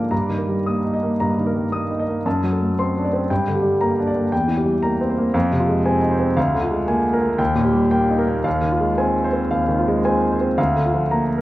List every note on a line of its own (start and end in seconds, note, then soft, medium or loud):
0.00 0.14 G#2 soft
0.00 0.14 D3 soft
0.00 0.13 F3 soft
0.00 0.14 A#3 soft
0.00 0.14 D4 soft
0.00 0.14 A#4 soft
0.00 0.11 F5 soft
0.00 0.11 A#5 soft
0.00 0.13 D6 soft
0.11 1.16 G2 soft
0.11 0.55 A#5 medium
0.29 0.59 D#3 soft
0.38 0.83 A#4 soft
0.48 0.77 G3 soft
0.66 0.95 A#3 soft
0.66 1.09 D#6 soft
0.84 1.13 D#4 soft
0.94 1.35 D#5 soft
1.03 1.30 A#3 soft
1.20 2.23 G2 soft
1.20 1.62 A#5 soft
1.38 1.66 D#3 soft
1.47 1.89 A#4 soft
1.55 1.83 G3 soft
1.72 2.01 A#3 soft
1.72 2.15 D#6 soft
1.90 2.18 D#4 soft
1.99 2.26 D#5 soft
2.08 2.25 A#3 soft
2.26 3.27 F#2 medium
2.26 2.68 A5 medium
2.43 2.72 F#3 soft
2.52 2.95 A4 soft
2.62 2.90 A3 soft
2.79 3.07 C4 soft
2.79 3.20 C6 soft
2.97 3.24 D4 soft
3.05 3.30 D5 soft
3.13 3.30 C4 soft
3.30 4.29 G2 medium
3.30 3.71 G5 medium
3.48 3.75 D3 soft
3.55 3.97 G4 soft
3.63 3.91 G3 soft
3.81 4.09 A#3 soft
3.81 4.22 A#5 medium
3.99 4.26 D4 soft
4.08 4.32 D5 medium
4.16 4.33 A#3 soft
4.32 5.32 E2 medium
4.32 4.73 G5 medium
4.48 4.76 E3 soft
4.57 4.99 G4 soft
4.66 4.93 G3 soft
4.83 5.11 A#3 soft
4.83 5.24 A#5 medium
5.01 5.28 C4 medium
5.10 5.35 C5 soft
5.18 5.35 A#3 soft
5.34 6.33 F2 medium
5.34 5.75 F5 medium
5.52 5.79 C3 medium
5.60 6.00 F4 medium
5.68 5.95 G#3 soft
5.86 6.13 C4 soft
5.86 6.26 G#5 medium
6.01 6.29 D#4 soft
6.11 6.37 C5 medium
6.19 6.36 C4 medium
6.37 7.37 D2 medium
6.37 6.78 F5 medium
6.54 6.82 D3 medium
6.62 7.03 F4 soft
6.71 6.98 G#3 soft
6.88 7.15 A#3 medium
6.88 7.29 G#5 medium
7.14 7.39 A#4 medium
7.22 7.39 A#3 medium
7.38 8.42 D#2 medium
7.38 7.81 G5 medium
7.56 7.84 A#2 medium
7.65 8.08 G4 medium
7.73 8.02 G3 medium
7.91 8.20 A#3 medium
7.91 8.34 G5 medium
8.10 8.38 D#4 medium
8.18 8.45 A#4 medium
8.27 8.45 A#3 medium
8.44 9.48 D#2 medium
8.44 8.87 F5 medium
8.62 8.90 D#3 medium
8.71 9.14 F4 soft
8.80 9.08 G#3 soft
8.98 9.27 C4 medium
8.98 9.41 G#5 medium
9.24 9.68 C5 medium
9.33 9.62 C4 medium
9.51 10.55 D#2 medium
9.51 9.94 F5 medium
9.69 9.98 D#3 medium
9.79 10.21 F4 medium
9.88 10.16 G#3 medium
10.05 10.33 C4 medium
10.05 10.47 G#5 medium
10.32 10.58 C5 medium
10.40 10.58 C4 medium
10.58 11.41 D2 medium
10.58 11.01 F5 medium
10.76 11.05 D3 soft
10.86 11.28 F4 soft
10.94 11.22 F3 soft
11.11 11.40 A#3 soft
11.11 11.41 A#5 medium
11.38 11.41 A#4 medium